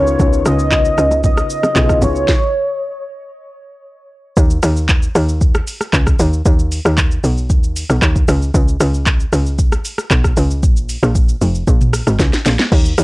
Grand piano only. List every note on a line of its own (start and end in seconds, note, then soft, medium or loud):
0.00 1.70 C#3 medium
0.00 1.71 B3 medium
0.00 1.72 D#4 medium
0.00 1.73 F4 medium
0.00 1.74 C#5 medium
1.74 2.27 C#3 soft
1.74 2.28 B3 soft
1.74 2.28 D#4 soft
1.74 1.83 E4 soft
1.74 2.29 G#4 medium
1.83 2.32 F4 soft